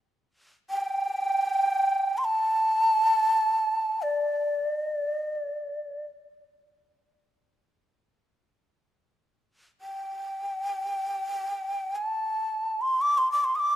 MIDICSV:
0, 0, Header, 1, 2, 480
1, 0, Start_track
1, 0, Tempo, 500000
1, 13207, End_track
2, 0, Start_track
2, 0, Title_t, "Shakuhachi"
2, 0, Program_c, 0, 77
2, 672, Note_on_c, 0, 79, 98
2, 2087, Note_on_c, 0, 84, 73
2, 2101, Note_off_c, 0, 79, 0
2, 2153, Note_on_c, 0, 81, 94
2, 2167, Note_off_c, 0, 84, 0
2, 3857, Note_on_c, 0, 74, 69
2, 3871, Note_off_c, 0, 81, 0
2, 4567, Note_off_c, 0, 74, 0
2, 4567, Note_on_c, 0, 75, 69
2, 4721, Note_off_c, 0, 75, 0
2, 4721, Note_on_c, 0, 74, 69
2, 4961, Note_off_c, 0, 74, 0
2, 4961, Note_on_c, 0, 75, 69
2, 5105, Note_off_c, 0, 75, 0
2, 5105, Note_on_c, 0, 74, 69
2, 5812, Note_off_c, 0, 74, 0
2, 9420, Note_on_c, 0, 79, 78
2, 11481, Note_on_c, 0, 81, 80
2, 11496, Note_off_c, 0, 79, 0
2, 12299, Note_on_c, 0, 84, 85
2, 12313, Note_off_c, 0, 81, 0
2, 12492, Note_on_c, 0, 86, 93
2, 12506, Note_off_c, 0, 84, 0
2, 12650, Note_on_c, 0, 84, 83
2, 12665, Note_off_c, 0, 86, 0
2, 12782, Note_off_c, 0, 84, 0
2, 12787, Note_on_c, 0, 86, 82
2, 12905, Note_on_c, 0, 84, 81
2, 12919, Note_off_c, 0, 86, 0
2, 13012, Note_on_c, 0, 87, 66
2, 13026, Note_off_c, 0, 84, 0
2, 13050, Note_on_c, 0, 86, 90
2, 13064, Note_off_c, 0, 87, 0
2, 13207, Note_off_c, 0, 86, 0
2, 13207, End_track
0, 0, End_of_file